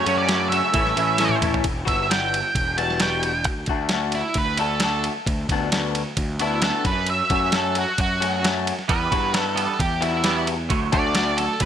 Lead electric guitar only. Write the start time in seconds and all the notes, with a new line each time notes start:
Already playing: C#5
0.18 D5
0.50 E5
1.88 E5
2.11 G5
2.78 A5
3.02 G5
4.15 E4
4.38 B4
4.59 A4
4.84 A4
6.41 E4
6.64 A4
6.86 B4
7.10 E5
7.56 A4
7.78 F#4
8.01 F#4
8.90 B4
9.39 A4
9.58 A4
9.81 G4
10.02 E4
10.94 D5
11.37 A4